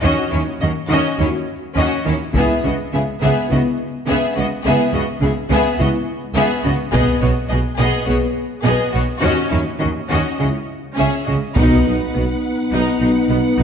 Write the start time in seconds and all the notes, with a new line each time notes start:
0.01 D#2 D#3 C#4 F#4 D#5
0.31 D#2 D#3 C#4 E4 C#5
0.60 D#2 D#3 C#4 F#4 D#5
0.88 D#2 D#3 C#4 F#4 D#5
1.19 D#2 D#3 C#4 E4 F#4 C#5
1.76 D#2 D#3 C#4 F#4 D#5
2.05 D#2 D#3 C#4 E4 C#5
2.34 C#2 C#3 B3 E4 G#4 E5, taiko
2.63 C#2 C#3 B3 F#4 D#5
2.93 C#2 C#3 B3 G#4 E5
3.21 C#2 C#3 B3 G#4 E5
3.48 C#2 C#3 B3 E4 F#4 D#5
3.52 B3
4.07 C#2 C#3 B3 G#4 E5
4.36 C#2 C#3 B3 F#4 D#5
4.65 C#2 C#3 B3 E4 G#4 E5
4.93 C#2 C#3 B3 F#4 D#5
5.21 C#2 C#3 B3 G#4 E5
5.50 C#2 C#3 B3 G#4 E5
5.78 C#2 C#3 B3 E4 F#4 D#5
6.34 C#2 C#3 B3 G#4 E5
6.64 C#2 C#3 B3 F#4 D#5
6.92 B1 B2 B3 G#4 D#5, taiko
7.21 B1 B2 B3 F#4 C#5
7.49 B1 B2 B3 G#4 D#5
7.77 B1 B2 B3 G#4 D#5
8.05 B1 B2 B3 F#4 G#4 C#5
8.64 B1 B2 B3 G#4 D#5
8.91 B1 B2 B3 F#4 C#5
9.19 D#3 C#4 F#4
9.23 D#2 D#5
9.49 D#2 D#3 C#4 E4 C#5
9.78 D#3 C#4 F#4 D#5
9.82 D#2
10.08 D#2 D#3 C#4 F#4 D#5
10.38 C#2 C#3 C#4 E4 F#4 D#5
10.96 C#3 C#4 G#4 E5
11.00 C#2
11.24 C#3 C#4 F#4 D#5
11.30 C#2
11.55 B1 B2 B3 D#4 B4 F#5, taiko
11.86 B1 B2 D#4
12.14 B1 B2 B3
12.72 B1 B2 D#4
13.00 B1 B2 D#4
13.29 B1 B2 B3
13.58 B1 B2 D#4